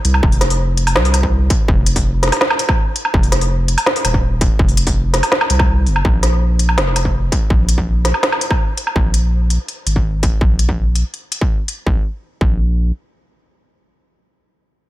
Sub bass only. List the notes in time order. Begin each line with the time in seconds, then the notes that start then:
0.05 C2
0.23 F1
0.96 C2
1.68 F1
3.14 F1
4.05 D#1
4.59 F1
5.50 C2
5.87 F#1
6.05 A#1
6.78 F1
7.50 A#1
8.96 A#1
9.87 G#1
10.41 A#1
11.87 A#1
12.41 A#1